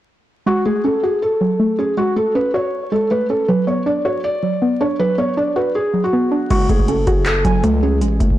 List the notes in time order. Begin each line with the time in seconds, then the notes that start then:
0.46 G#3 F#4
0.65 A3 G#4
0.84 C#4 A4
1.03 F#4 G#4
1.22 A4
1.41 F#3
1.60 A3
1.79 C#4 G#4
1.97 G#3 F#4
2.16 A3 A4
2.35 C#4 B4
2.54 F#4 C#5
2.92 G#3 A4
3.11 A3 B4
3.30 C#4 A4
3.48 F#3 B4
3.67 B3 C#5
3.86 D4 D5
4.05 F#4 C#5
4.24 D5
4.43 F#3
4.62 B3
4.81 D4 C#5
4.99 F#3 B4
5.18 B3 C#5
5.37 D4 D5
5.56 F#4 B4
5.75 G#4
5.94 F#3
6.04 F#4
6.13 B3
6.31 D4
6.50 F#1 G#3 F#4, kick, closed hi-hat, crash
6.69 F#1 A3 G#4, kick, closed hi-hat
6.79 kick
6.88 C#4 A4, closed hi-hat
7.07 F#1 F#4 G#4, kick, closed hi-hat
7.26 A4, clap, closed hi-hat
7.45 F#1 F#3 G#5, kick, closed hi-hat
7.63 C#2 A3, closed hi-hat
7.83 C#4 G#4
8.01 A1 G#3, closed hi-hat
8.20 F#1 A3, kick, closed hi-hat
8.30 kick